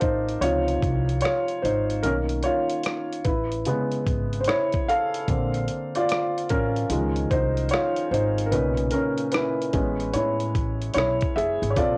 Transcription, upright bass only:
0.02 0.40 A1 medium
0.41 0.80 C#2 medium
0.82 1.21 C2 medium
1.64 2.02 G#1 medium
2.04 2.42 B1 medium
3.25 3.64 A1 medium
4.07 4.45 G#1 medium
5.28 5.66 A#1 loud
6.51 6.88 A1 medium
6.90 7.28 C#2 medium
7.31 7.69 C2 medium
8.11 8.50 G#1 medium
8.52 8.90 B1 medium
9.74 10.12 A1 loud
10.14 10.53 A2 medium
10.55 10.93 A1 medium
10.95 11.20 B1 medium
11.36 11.61 F#1 medium
11.62 11.76 G#1 medium
11.77 11.98 A#1 loud

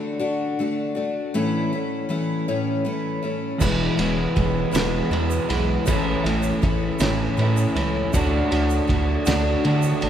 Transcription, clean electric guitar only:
3.58 4.35 E2 loud
3.58 4.36 B2 loud
3.58 4.01 E3 loud
3.58 3.98 G#3 loud
3.58 3.97 B3 loud
3.58 3.96 E4 loud
3.97 4.74 G#3 medium
3.97 4.73 B3 medium
3.97 4.72 E4 medium
4.01 4.74 E3 medium
4.73 5.50 E2 medium
4.73 5.50 B2 medium
4.73 5.10 E3 medium
4.73 5.11 G#3 medium
4.73 5.12 B3 medium
4.73 5.12 E4 medium
5.11 5.51 E3 medium
5.11 5.50 G#3 medium
5.11 5.49 B3 medium
5.11 5.48 E4 medium
5.49 5.86 E3 medium
5.49 5.85 G#3 medium
5.49 5.85 B3 medium
5.49 5.84 E4 medium
5.87 6.62 A2 loud
5.87 6.62 E3 loud
5.87 6.27 A3 loud
5.87 6.24 C#4 loud
5.87 6.23 E4 loud
6.24 7.02 A3 medium
6.24 7.00 C#4 medium
6.24 6.99 E4 medium
7.01 7.77 A2 medium
7.01 7.37 E3 medium
7.01 7.40 A3 medium
7.01 7.40 C#4 medium
7.01 7.41 E4 medium
7.39 8.11 E3 medium
7.39 7.78 A3 medium
7.39 7.76 C#4 medium
7.39 7.74 E4 medium
7.75 8.14 A3 medium
7.75 8.11 C#4 medium
7.75 8.11 E4 medium
8.13 8.89 D3 loud
8.13 8.54 A3 loud
8.13 8.51 D4 loud
8.13 8.50 F#4 loud
8.51 9.27 A3 medium
8.51 9.26 D4 medium
8.51 9.25 F#4 medium
9.26 9.62 D3 medium
9.26 9.63 A3 medium
9.26 9.64 D4 medium
9.26 9.65 F#4 loud
9.64 10.10 D3 medium
9.64 10.03 A3 medium
9.64 10.02 D4 medium
9.64 10.00 F#4 medium
10.01 10.10 A3 medium
10.01 10.10 D4 medium
10.01 10.10 F#4 medium

